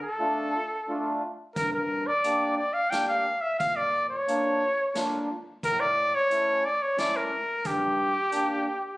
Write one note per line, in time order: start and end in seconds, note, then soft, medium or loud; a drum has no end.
0.03 1.18 A4 medium
0.19 0.54 A3 medium
0.19 0.54 D4 medium
0.19 0.54 F4 medium
0.88 1.22 A3 medium
0.88 1.22 D4 medium
0.88 1.23 F4 medium
1.56 2.07 G2 medium
1.56 1.72 A#4 medium
1.56 kick medium
1.56 closed hi-hat soft
1.73 2.08 A#4 medium
2.07 2.56 D5 loud
2.24 2.58 A#3 medium
2.24 2.58 D4 medium
2.24 2.59 G4 medium
2.24 closed hi-hat soft
2.57 2.75 D5 medium
2.74 2.92 F5 medium
2.90 3.26 A#3 medium
2.90 3.26 D4 medium
2.90 3.26 G4 medium
2.90 3.08 G5 loud
2.90 snare medium
2.90 closed hi-hat medium
3.08 3.43 F5 loud
3.41 3.58 E5 medium
3.59 4.10 A#2 medium
3.59 3.78 F5 loud
3.59 kick loud
3.59 closed hi-hat soft
3.76 4.09 D5 loud
4.10 5.25 C#5 medium
4.28 4.62 A#3 medium
4.28 4.62 D4 medium
4.28 4.62 F4 medium
4.28 closed hi-hat medium
4.95 5.29 A#3 medium
4.95 5.29 D4 medium
4.95 5.29 F4 medium
4.95 snare medium
4.95 closed hi-hat medium
5.63 6.14 A2 medium
5.63 5.82 A#4 loud
5.63 kick medium
5.63 closed hi-hat soft
5.80 6.17 D5 loud
6.15 6.67 C#5 loud
6.30 6.64 A3 medium
6.30 6.64 C#4 medium
6.30 6.65 E4 medium
6.30 closed hi-hat medium
6.66 6.84 D5 loud
6.82 7.00 C#5 medium
6.97 7.31 A3 medium
6.97 7.32 C#4 medium
6.97 7.32 E4 medium
6.97 7.18 D5 loud
6.97 snare medium
6.97 closed hi-hat medium
7.16 7.68 A#4 medium
7.65 8.15 G2 medium
7.65 8.97 G4 loud
7.65 kick medium
7.65 closed hi-hat soft
8.31 8.66 A#3 medium
8.31 8.66 D4 medium
8.31 8.66 G4 medium
8.31 closed hi-hat medium